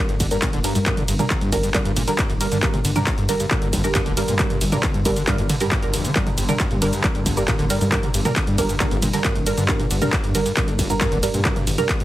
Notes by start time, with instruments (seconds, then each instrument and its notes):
Already playing: synth drone G2 D3
0.09 detuned saw bass G1, acid bass G2, closed hi-hat
0.20 detuned saw bass G1, acid bass D3, kick, open hi-hat, ride, shaker
0.31 acid bass G2, synth stab G3 D4 A#4, closed hi-hat, shaker
0.42 acid bass A#2, kick, clap, closed hi-hat, shaker
0.53 detuned saw bass D1, acid bass D3, closed hi-hat
0.64 acid bass G2, synth stab G3 D4 A#4, open hi-hat, ride, shaker
0.75 acid bass F#2, detuned saw bass G2, closed hi-hat, shaker
0.86 acid bass G2, synth stab G3 D4 A#4, kick, clap, closed hi-hat, shaker
0.97 acid bass D3, closed hi-hat, mid tom
1.08 detuned saw bass G1, acid bass G2, open hi-hat, ride, shaker
1.19 acid bass A#2, synth stab G3 D4 A#4, closed hi-hat, mid tom, shaker
1.30 acid bass D3, kick, clap, closed hi-hat, shaker
1.41 detuned saw bass G2, acid bass G2, closed hi-hat
1.52 detuned saw bass G1, acid bass F#2, synth stab G3 D4 A#4, kick, open hi-hat, ride, shaker
1.63 acid bass G2, closed hi-hat, shaker
1.74 acid bass D3, synth stab G3 D4 A#4, kick, clap, closed hi-hat, shaker
1.85 detuned saw bass G1, acid bass G2, closed hi-hat
1.96 detuned saw bass G1, acid bass A#2, mid tom, open hi-hat, ride, shaker
2.08 acid bass D3, synth stab G3 D4 A#4, open hi-hat, shaker
2.19 acid bass G2, kick, clap, closed hi-hat, shaker
2.30 detuned saw bass D1, acid bass F#2, closed hi-hat
2.41 acid bass G2, synth stab G3 D4 A#4, open hi-hat, ride, shaker
2.52 detuned saw bass G2, acid bass D3, closed hi-hat, shaker
2.63 acid bass G2, synth stab G3 D4 A#4, kick, clap, closed hi-hat, shaker
2.74 acid bass A#2, closed hi-hat, mid tom
2.85 detuned saw bass G1, acid bass D3, open hi-hat, ride, shaker
2.96 acid bass G2, synth stab G3 D4 A#4, closed hi-hat, mid tom, shaker
3.07 acid bass F#2, kick, clap, closed hi-hat, shaker
3.18 acid bass G2, detuned saw bass G2, closed hi-hat
3.29 detuned saw bass G1, acid bass D3, synth stab G3 D4 A#4, open hi-hat, ride, shaker
3.40 acid bass G2, closed hi-hat, shaker
3.51 acid bass A#2, synth stab G3 D4 A#4, kick, clap, closed hi-hat, shaker
3.62 detuned saw bass G1, acid bass D3, closed hi-hat
3.73 detuned saw bass G1, acid bass G2, kick, open hi-hat, ride, shaker
3.84 acid bass F#2, synth stab G3 D4 A#4, closed hi-hat, shaker
3.95 acid bass G2, kick, clap, closed hi-hat, shaker
4.06 detuned saw bass D1, acid bass D3, closed hi-hat
4.17 acid bass G2, synth stab G3 D4 A#4, open hi-hat, ride, shaker
4.28 detuned saw bass G2, acid bass A#2, closed hi-hat, shaker
4.39 acid bass D3, synth stab G3 D4 A#4, kick, clap, closed hi-hat, shaker
4.50 acid bass G2, closed hi-hat, mid tom
4.61 detuned saw bass G1, acid bass F#2, open hi-hat, ride, shaker
4.72 acid bass G2, synth stab G3 D4 A#4, closed hi-hat, mid tom, shaker
4.83 acid bass D3, kick, clap, closed hi-hat, shaker
4.94 acid bass G2, detuned saw bass G2, closed hi-hat
5.05 detuned saw bass G1, acid bass A#2, synth stab G3 D4 A#4, kick, open hi-hat, ride, shaker
5.16 acid bass D3, closed hi-hat, shaker
5.27 acid bass G2, synth stab G3 D4 A#4, kick, clap, closed hi-hat, shaker
5.38 detuned saw bass G1, acid bass F#2, closed hi-hat
5.49 acid bass D3, mid tom, open hi-hat, ride, shaker
5.60 detuned saw bass G2, acid bass G2, synth stab G3 D4 A#4, open hi-hat, shaker
5.71 acid bass G2, kick, clap, closed hi-hat, shaker
5.83 acid bass G1, synth stab G3 D4 A#4, closed hi-hat
5.94 acid bass F#2, open hi-hat, ride, shaker
6.05 acid bass D3, closed hi-hat, shaker
6.16 acid bass G2, synth stab G3 D4 A#4, kick, clap, closed hi-hat, shaker
6.27 acid bass F#2, closed hi-hat, mid tom
6.38 detuned saw bass G1, acid bass G2, open hi-hat, ride, shaker
6.49 acid bass D3, synth stab G3 D4 A#4, closed hi-hat, mid tom, shaker
6.60 acid bass G2, kick, clap, closed hi-hat, shaker
6.71 detuned saw bass G2, acid bass A#2, closed hi-hat
6.82 detuned saw bass G1, acid bass D3, synth stab G3 D4 A#4, open hi-hat, ride, shaker
6.93 acid bass G2, closed hi-hat, shaker
7.04 acid bass F#2, synth stab G3 D4 A#4, kick, clap, closed hi-hat, shaker
7.15 detuned saw bass G1, acid bass G2, closed hi-hat
7.26 detuned saw bass G1, acid bass D3, kick, open hi-hat, ride, shaker
7.37 acid bass G2, synth stab G3 D4 A#4, closed hi-hat, shaker
7.48 acid bass A#2, kick, clap, closed hi-hat, shaker
7.59 detuned saw bass D1, acid bass D3, closed hi-hat
7.70 acid bass G2, synth stab G3 D4 A#4, open hi-hat, ride, shaker
7.81 acid bass F#2, detuned saw bass G2, closed hi-hat, shaker
7.92 acid bass G2, synth stab G3 D4 A#4, kick, clap, closed hi-hat, shaker
8.03 acid bass D3, closed hi-hat, mid tom
8.14 detuned saw bass G1, acid bass G2, open hi-hat, ride, shaker
8.25 acid bass A#2, synth stab G3 D4 A#4, closed hi-hat, mid tom, shaker
8.36 acid bass D3, kick, clap, closed hi-hat, shaker
8.47 acid bass G2, detuned saw bass G2, closed hi-hat
8.58 detuned saw bass G1, acid bass F#2, synth stab G3 D4 A#4, kick, open hi-hat, ride, shaker
8.69 acid bass G2, closed hi-hat, shaker
8.80 acid bass D3, synth stab G3 D4 A#4, kick, clap, closed hi-hat, shaker
8.91 detuned saw bass G1, acid bass G2, closed hi-hat
9.02 detuned saw bass G1, acid bass A#2, mid tom, open hi-hat, ride, shaker
9.13 acid bass D3, synth stab G3 D4 A#4, open hi-hat, shaker
9.24 acid bass G2, kick, clap, closed hi-hat, shaker
9.35 detuned saw bass D1, acid bass F#2, closed hi-hat
9.46 acid bass G2, synth stab G3 D4 A#4, open hi-hat, ride, shaker
9.57 detuned saw bass G2, acid bass D3, closed hi-hat, shaker
9.68 acid bass G2, synth stab G3 D4 A#4, kick, clap, closed hi-hat, shaker
9.79 acid bass A#2, closed hi-hat, mid tom
9.91 detuned saw bass G1, acid bass D3, open hi-hat, ride, shaker
10.02 acid bass G2, synth stab G3 D4 A#4, closed hi-hat, mid tom, shaker
10.13 acid bass F#2, kick, clap, closed hi-hat, shaker
10.24 detuned saw bass G2, acid bass G2, closed hi-hat
10.35 detuned saw bass G1, acid bass D3, synth stab G3 D4 A#4, open hi-hat, ride, shaker
10.46 acid bass G2, closed hi-hat, shaker
10.57 acid bass A#2, synth stab G3 D4 A#4, kick, clap, closed hi-hat, shaker
10.68 detuned saw bass G1, acid bass D3, closed hi-hat
10.79 detuned saw bass G1, acid bass G2, kick, open hi-hat, ride, shaker
10.90 acid bass F#2, synth stab G3 D4 A#4, closed hi-hat, shaker
11.01 acid bass G2, kick, clap, closed hi-hat, shaker
11.12 detuned saw bass D1, acid bass D3, closed hi-hat
11.23 acid bass G2, synth stab G3 D4 A#4, open hi-hat, ride, shaker
11.34 detuned saw bass G2, acid bass A#2, closed hi-hat, shaker
11.45 acid bass D3, synth stab G3 D4 A#4, kick, clap, closed hi-hat, shaker
11.56 acid bass G2, closed hi-hat, mid tom
11.67 detuned saw bass G1, acid bass F#2, open hi-hat, ride, shaker
11.78 acid bass G2, synth stab G3 D4 A#4, closed hi-hat, mid tom, shaker
11.89 acid bass D3, kick, clap, closed hi-hat, shaker
12.00 detuned saw bass G2, acid bass G2, closed hi-hat